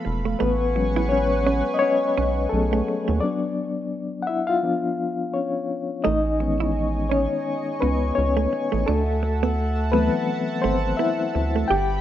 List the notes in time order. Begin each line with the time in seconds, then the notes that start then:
Already playing: F3 A3 B3 A4 F5 B5
0.05 E1, muted hollow-body jazz guitar stroke
0.25 A3
0.39 A1 A3 B3 B4 F#5 G#5 C#6
0.75 F#3 G#3 B3 C#4, muted hollow-body jazz guitar stroke
0.96 E4
1.09 C#4 C#5
1.47 C#4
1.74 D#5
1.79 C#4 C#5
2.17 B1 C#4
2.49 B1 F#3 A3 B3 C#4 G#4 A4
2.73 A3
2.88 muted hollow-body jazz guitar stroke
3.08 D#2 A3
3.20 F#3 B3 D4 D5
4.22 F#5
4.27 E4 E5
4.47 F4 F5
4.63 F3 B3 D4
5.34 C#4 C#5
6.03 A1 A3 D#4 D#5 G#5 C#6
6.40 D#3 G#3 B3 C#4, muted hollow-body jazz guitar stroke
6.60 E4
7.09 C#4 C#5
7.80 C#2 B3 C#4 B4
8.15 C#2 C#4 C#5
8.37 A3
8.53 muted hollow-body jazz guitar stroke
8.72 A1 A3
8.86 D2 A3 D4 A4 E5 F#5 A5
9.23 muted hollow-body jazz guitar stroke
9.43 B3
9.92 E3 F#3 A3 B3 C4 B4
10.62 G#1 A3 C4 C5
10.97 B3 E4 E5
11.35 D2, muted hollow-body jazz guitar stroke
11.56 A3
11.68 G1 G4 G5 B5